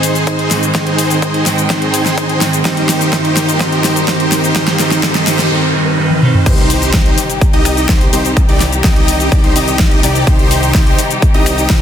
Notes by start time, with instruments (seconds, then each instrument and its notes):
Already playing: clean electric guitar G#2 D#3 G#3 C4 D#4, string section D#3 G#3 C4 G#4 C5, supersaw synth D#4 G#4 C5, riser
0.03 open hi-hat, shaker
0.15 closed hi-hat, shaker
0.27 supersaw synth D#4 G#4 C5, kick, closed hi-hat, shaker
0.39 closed hi-hat
0.50 clean electric guitar G#2 D#3 G#3 C4 D#4, snare, open hi-hat, shaker
0.63 closed hi-hat, shaker
0.74 clean electric guitar D#3 G#3 C4 D#4, supersaw synth D#4 G#4 C5, string section G5, kick, snare, closed hi-hat, shaker
0.87 closed hi-hat
0.98 open hi-hat, shaker
1.10 closed hi-hat, shaker
1.22 supersaw synth D#4 G#4 C5, kick, closed hi-hat, shaker
1.34 closed hi-hat
1.45 clean electric guitar G#2 D#3 G#3 C4 D#4, snare, open hi-hat, shaker
1.58 closed hi-hat, shaker
1.69 clean electric guitar G#2 D#3 G#3 C4 D#4, supersaw synth D#4 G#4 C5, kick, snare, closed hi-hat, shaker
1.82 closed hi-hat
1.94 open hi-hat, shaker
2.06 snare, closed hi-hat, shaker
2.17 supersaw synth D#4 G#4 C5, kick, closed hi-hat, shaker
2.29 closed hi-hat
2.40 clean electric guitar G#2 D#3 G#3 C4 D#4, snare, open hi-hat, shaker
2.53 closed hi-hat, shaker
2.64 clean electric guitar G2 D#3 G3 C4 D#4, string section G3 A#3 G4 A#4, supersaw synth D#4 G4 C5, kick, snare, closed hi-hat, shaker
2.77 closed hi-hat
2.89 snare, open hi-hat, shaker
3.01 closed hi-hat, shaker
3.12 clean electric guitar G2 D#3 G3 C4 D#4, supersaw synth D#4 G4 C5, kick, snare, closed hi-hat, shaker
3.25 closed hi-hat
3.37 snare, open hi-hat, shaker
3.49 closed hi-hat, shaker
3.59 clean electric guitar G2 D#3 G3 C4 D#4, supersaw synth D#4 G4 C5, kick, snare, closed hi-hat, shaker
3.72 closed hi-hat
3.84 snare, open hi-hat, shaker
3.96 closed hi-hat, shaker
4.07 clean electric guitar G2 D#3 G3 C4 D#4, supersaw synth D#4 G4 C5, kick, snare, closed hi-hat, shaker
4.20 closed hi-hat
4.32 snare, open hi-hat, shaker
4.44 closed hi-hat, shaker
4.54 clean electric guitar G2 D#3 G3 C4 D#4, supersaw synth D#4 G4 C5, string section F4, kick, snare, closed hi-hat, noise sweep, shaker
4.68 snare, closed hi-hat
4.78 clean electric guitar G2 D#3 G3 C4 D#4, supersaw synth D#4 G4 C5, snare, open hi-hat, shaker
4.91 snare, closed hi-hat, shaker
5.02 clean electric guitar G2 D#3 G3 C4 D#4, supersaw synth D#4 G4 C5, kick, snare, closed hi-hat, shaker
5.15 snare, closed hi-hat
5.26 clean electric guitar G2 D#3 G3 C4 D#4, supersaw synth D#4 G4 C5, snare, open hi-hat, shaker
5.39 snare, closed hi-hat, shaker
5.50 clean electric guitar G2 D#3 G3 C4 D#4
5.73 clean electric guitar G2 D#3 G3 C4 D#4
5.97 clean electric guitar G2 D#3 G3 C4 D#4
6.10 high tom
6.21 clean electric guitar G2 D#3 G3 C4 D#4, mid tom
6.34 mid tom
6.46 analog synth bass C2, string section C3 D#3 G3 D#4 G4, supersaw synth D#4 G4 C5, kick, closed hi-hat, crash, impact, shaker
6.58 closed hi-hat
6.70 open hi-hat, shaker
6.82 closed hi-hat, shaker
6.94 analog synth bass C2, supersaw synth G4 C5, kick, snare, closed hi-hat, shaker
7.06 closed hi-hat
7.18 open hi-hat, shaker
7.30 closed hi-hat, shaker
7.41 kick, closed hi-hat, shaker
7.53 analog synth bass C2, supersaw synth D#4 G4 D#5, closed hi-hat
7.65 finger snap, open hi-hat, shaker
7.77 closed hi-hat, shaker
7.89 analog synth bass C2, supersaw synth D#4 G4 C5, kick, snare, closed hi-hat, shaker
8.01 closed hi-hat
8.13 analog synth bass C2, supersaw synth D#4 G4 C5, open hi-hat, shaker
8.25 closed hi-hat, shaker
8.37 finger snap, kick, closed hi-hat, shaker
8.49 analog synth bass C2, supersaw synth D#4 G4 D5, closed hi-hat
8.60 snare, open hi-hat, shaker
8.72 closed hi-hat, shaker
8.84 analog synth bass C2, supersaw synth D#4 G4 D#5, kick, snare, closed hi-hat, shaker
8.96 closed hi-hat
9.08 open hi-hat, shaker
9.20 closed hi-hat, shaker
9.32 analog synth bass C2, supersaw synth D#4 D5, kick, closed hi-hat, shaker
9.44 analog synth bass C2, supersaw synth D#4 G4 C5, closed hi-hat
9.56 analog synth bass C2, supersaw synth D#4 G4 D#5, open hi-hat, shaker
9.68 closed hi-hat, shaker
9.79 kick, snare, closed hi-hat, shaker
9.91 closed hi-hat
10.03 analog synth bass C2, supersaw synth D#4 G4 D5, open hi-hat, shaker
10.15 closed hi-hat, shaker
10.27 analog synth bass C2, supersaw synth D#4 G4 C5, kick, closed hi-hat, shaker
10.39 closed hi-hat
10.51 open hi-hat, shaker
10.63 closed hi-hat, shaker
10.75 analog synth bass C2, supersaw synth D#4 G4 C5, kick, snare, closed hi-hat, shaker
10.87 closed hi-hat
10.99 open hi-hat, shaker
11.10 closed hi-hat, shaker
11.22 kick, closed hi-hat, shaker
11.34 analog synth bass C2, supersaw synth D#4 G4 D#5, closed hi-hat
11.46 finger snap, open hi-hat, shaker
11.58 closed hi-hat, shaker
11.70 analog synth bass C2, supersaw synth D#4 G4 C5, kick, snare, closed hi-hat, shaker